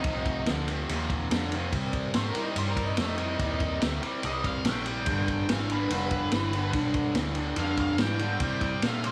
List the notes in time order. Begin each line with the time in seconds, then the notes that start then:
Already playing: D#4
0.04 C2 F2 C3, kick, ride
0.25 kick, ride
0.46 D2 F2 D3, snare, ride
0.68 F2 C3, ride
0.89 D#2 F2 C3, ride
1.10 kick, ride
1.31 F2 D3, snare, ride
1.52 F2 C3, ride
1.72 C3 G3, kick, ride
1.93 kick, ride
2.14 G#2 C3 A3 C5, snare, ride
2.29 A#4
2.35 C3 G3, muted fingered electric bass stroke, ride
2.43 D#4
2.56 G2 C3 G3 C5, ride
2.70 A#4
2.77 kick, ride
2.86 D#4
2.97 F2 C3 A3 D#4, snare, ride
3.18 C3 G3, ride
3.39 D#2 C3 G3, kick, ride
3.60 kick, ride
3.81 D2 C3 A3, snare, ride
4.02 C3 G3, ride
4.23 C2 C3 G3 D#5, ride
4.44 F5, kick, ride
4.65 A#1 C3 A3 G5, snare, ride
4.86 C3 G3, ride
5.06 G1 G2 D3, kick, ride
5.28 G5, kick, ride
5.49 G#1 G2 E3 F5, snare, ride
5.70 G2 D3 B4, ride
5.90 F1 G2 D3 B4, ride
6.11 kick, ride
6.32 G1 G2 E3, snare, ride
6.53 G2 D3, ride
6.73 B1 G2 D3, kick, ride
6.94 kick, ride
7.15 D2 G2 E3, snare, ride
7.35 G2 D3, ride
7.56 F2 G2 D3 F5, ride
7.77 F5, kick, ride
7.98 G2 G#2 E3 G5, snare, ride
8.19 G2 D3, ride
8.40 C3 G3, kick, ride
8.61 G5, kick, ride
8.82 A#2 C3 A3 F5, snare, ride
9.03 C3 G3 C5, ride